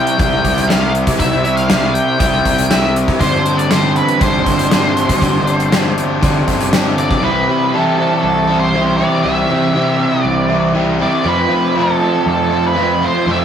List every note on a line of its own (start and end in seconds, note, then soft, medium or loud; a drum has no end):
0.00 0.16 C3 medium
0.00 3.20 C3 medium
0.00 0.18 G3 medium
0.00 3.19 G3 medium
0.00 0.19 C4 medium
0.00 3.20 C4 medium
0.00 0.19 E4 medium
0.00 3.21 E4 medium
0.00 3.21 G4 medium
0.00 0.19 G5 loud
0.07 closed hi-hat medium
0.17 0.39 C2 loud
0.17 0.67 C3 medium
0.17 0.68 G3 medium
0.17 0.69 C4 loud
0.17 0.69 E4 loud
0.17 0.71 G5 loud
0.17 kick loud
0.17 closed hi-hat medium
0.44 1.03 C2 medium
0.44 kick medium
0.44 closed hi-hat medium
0.58 closed hi-hat medium
0.68 1.17 C3 medium
0.68 1.18 G3 medium
0.68 1.19 C4 medium
0.68 1.19 E4 medium
0.68 0.92 F5 medium
0.68 snare loud
0.68 closed hi-hat medium
0.95 closed hi-hat medium
1.07 kick loud
1.07 closed hi-hat medium
1.18 1.98 C2 medium
1.18 1.67 C3 medium
1.18 1.45 G3 loud
1.18 1.44 C4 loud
1.18 1.42 E4 loud
1.18 1.56 E5 medium
1.18 kick medium
1.18 closed hi-hat medium
1.43 1.69 G3 medium
1.43 1.70 C4 medium
1.43 1.70 E4 medium
1.43 closed hi-hat medium
1.57 1.96 F5 medium
1.57 closed hi-hat medium
1.68 2.17 C3 medium
1.68 2.19 G3 medium
1.68 2.20 C4 medium
1.68 2.20 E4 medium
1.68 snare loud
1.68 closed hi-hat medium
1.94 2.19 G5 loud
1.94 closed hi-hat medium
2.19 2.40 C2 loud
2.19 2.68 C3 medium
2.19 2.69 G3 loud
2.19 2.70 C4 loud
2.19 2.70 E4 medium
2.19 2.72 G5 loud
2.19 kick loud
2.19 closed hi-hat medium
2.45 3.04 C2 medium
2.45 kick medium
2.45 closed hi-hat medium
2.58 closed hi-hat medium
2.69 3.18 C3 medium
2.69 3.20 G3 medium
2.69 3.20 C4 medium
2.69 3.20 E4 medium
2.69 2.94 E5 medium
2.69 snare loud
2.69 closed hi-hat medium
2.96 snare soft
2.96 closed hi-hat medium
3.08 kick loud
3.19 3.99 G1 loud
3.19 4.19 G2 medium
3.19 3.69 D3 medium
3.19 3.46 G3 medium
3.19 3.45 C4 loud
3.19 3.44 D4 loud
3.19 7.23 G4 medium
3.19 3.59 C5 loud
3.19 kick medium
3.19 closed hi-hat medium
3.44 3.71 G3 medium
3.44 3.71 C4 medium
3.44 3.72 D4 medium
3.44 closed hi-hat medium
3.58 3.71 D5 medium
3.58 closed hi-hat medium
3.70 4.19 D3 medium
3.70 4.20 G3 medium
3.70 4.21 C4 medium
3.70 4.21 D4 medium
3.70 3.96 C5 loud
3.70 snare loud
3.70 closed hi-hat medium
3.96 4.21 B4 medium
3.96 closed hi-hat medium
4.08 closed hi-hat medium
4.19 4.41 G1 loud
4.19 4.96 G2 medium
4.19 4.69 D3 medium
4.19 4.71 G3 medium
4.19 4.72 C4 loud
4.19 4.71 D4 medium
4.19 6.69 C5 medium
4.19 kick loud
4.19 closed hi-hat medium
4.46 5.05 G1 medium
4.46 kick medium
4.46 closed hi-hat medium
4.59 closed hi-hat medium
4.70 5.19 D3 medium
4.70 5.20 G3 medium
4.70 5.21 C4 medium
4.70 5.21 D4 medium
4.70 snare loud
4.70 closed hi-hat medium
4.97 snare soft
4.97 closed hi-hat medium
5.09 kick medium
5.09 closed hi-hat medium
5.20 6.00 G1 loud
5.20 5.71 G2 loud
5.20 5.69 D3 medium
5.20 5.47 G3 loud
5.20 5.45 C4 loud
5.20 5.44 D4 loud
5.20 kick medium
5.20 closed hi-hat medium
5.45 5.71 G3 medium
5.45 5.72 C4 medium
5.45 5.72 D4 medium
5.45 closed hi-hat medium
5.60 closed hi-hat medium
5.71 6.21 D3 medium
5.71 6.21 G3 medium
5.71 6.22 C4 medium
5.71 6.22 D4 medium
5.71 snare loud
5.71 closed hi-hat medium
5.98 closed hi-hat medium
6.21 6.42 G1 loud
6.21 6.97 G2 medium
6.21 6.70 D3 loud
6.21 6.71 G3 medium
6.21 6.72 C4 loud
6.21 6.73 D4 loud
6.21 kick loud
6.21 closed hi-hat medium
6.48 7.06 G1 medium
6.48 kick medium
6.48 closed hi-hat medium
6.61 closed hi-hat medium
6.71 7.21 D3 medium
6.71 7.21 G3 medium
6.71 7.22 C4 medium
6.71 7.22 D4 medium
6.71 snare loud
6.71 closed hi-hat medium
6.98 7.24 D5 medium
6.98 snare soft
6.98 closed hi-hat medium
7.11 kick loud
7.22 7.42 C2 loud
7.22 7.72 C3 loud
7.22 7.73 E3 medium
7.22 7.50 G3 medium
7.22 7.49 C4 loud
7.22 7.47 E4 medium
7.22 7.47 G4 loud
7.22 7.70 B4 medium
7.47 8.06 C3 medium
7.47 7.73 G3 medium
7.47 7.74 C4 medium
7.47 7.75 E4 medium
7.47 7.75 G4 medium
7.73 8.74 C3 medium
7.73 8.73 E3 medium
7.73 8.49 G3 medium
7.73 8.49 C4 medium
7.73 8.47 E4 medium
7.73 7.98 G4 medium
7.73 8.22 A4 medium
7.98 8.73 G3 medium
7.98 8.75 C4 medium
7.98 8.75 G4 medium
8.23 9.02 C2 loud
8.23 8.59 A4 medium
8.48 8.73 G3 soft
8.48 8.74 C4 medium
8.48 8.75 E4 medium
8.60 8.99 C5 medium
8.73 9.24 E3 medium
8.73 8.99 G3 medium
8.73 8.99 C4 medium
8.73 8.97 E4 medium
8.73 8.97 G4 medium
8.96 9.23 G3 medium
8.96 9.25 C4 medium
8.96 9.25 E4 medium
8.96 9.24 G4 medium
8.96 9.22 D5 loud
9.23 9.44 C2 loud
9.23 9.72 C3 medium
9.23 9.74 E3 medium
9.23 9.50 G3 loud
9.23 9.50 C4 loud
9.23 9.48 E4 medium
9.23 9.49 G4 loud
9.23 10.22 E5 loud
9.49 10.09 C3 medium
9.49 9.74 G3 medium
9.49 9.75 C4 medium
9.49 9.76 E4 medium
9.49 9.75 G4 medium
9.74 10.75 C3 medium
9.74 10.73 E3 medium
9.74 10.50 G3 medium
9.74 10.49 C4 medium
9.74 10.48 E4 medium
9.74 9.97 G4 medium
9.98 10.75 G3 medium
9.98 10.76 C4 medium
9.98 10.76 G4 medium
10.22 11.03 C2 loud
10.22 10.71 D5 loud
10.48 10.74 G3 medium
10.48 10.75 C4 medium
10.48 10.76 E4 medium
10.73 11.23 E3 medium
10.73 11.01 G3 medium
10.73 11.00 C4 medium
10.73 10.99 E4 medium
10.73 10.99 G4 medium
10.99 11.24 G3 medium
10.99 11.25 C4 medium
10.99 11.26 E4 medium
10.99 11.24 G4 medium
10.99 11.27 D5 medium
11.23 11.45 F2 loud
11.23 11.75 F3 loud
11.23 11.51 A3 medium
11.23 11.50 C4 loud
11.23 11.48 F4 loud
11.28 11.74 B4 medium
11.49 12.09 F3 medium
11.49 11.75 A3 medium
11.49 11.76 C4 medium
11.49 11.77 F4 medium
11.75 12.74 F3 medium
11.75 12.52 A3 medium
11.75 12.51 C4 medium
11.75 12.49 F4 medium
11.79 12.28 A4 medium
12.01 12.77 A3 medium
12.01 12.78 C4 medium
12.01 12.78 F4 medium
12.26 13.05 F2 loud
12.26 12.66 A4 medium
12.50 12.76 A3 medium
12.50 12.77 C4 medium
12.50 12.77 F4 medium
12.67 13.04 B4 loud
12.75 13.25 F3 medium
12.75 13.04 A3 medium
12.75 13.02 C4 medium
12.75 13.00 F4 medium
13.01 13.27 A3 medium
13.01 13.28 C4 medium
13.01 13.28 F4 medium
13.05 13.30 C5 medium
13.26 13.45 F2 loud
13.26 13.45 F3 medium
13.26 13.45 A3 loud
13.26 13.45 C4 medium
13.26 13.45 F4 loud
13.31 13.45 E5 loud